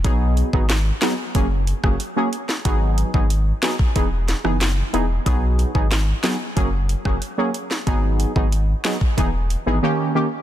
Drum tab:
HH |x-x-x-x-x-x-x-x-|x-x-x-x-x-x-x-x-|x-x-x-x-x-x-x-x-|x-x-x-x-x-x-----|
CP |----x-x---------|------x-----x---|----x-x---------|------x---------|
SD |----o-o----r---o|------o---oro---|----o-o----r---o|------o---------|
BD |o--o----o--o----|o--o---oo-------|o--o----o--o----|o--o---oo-------|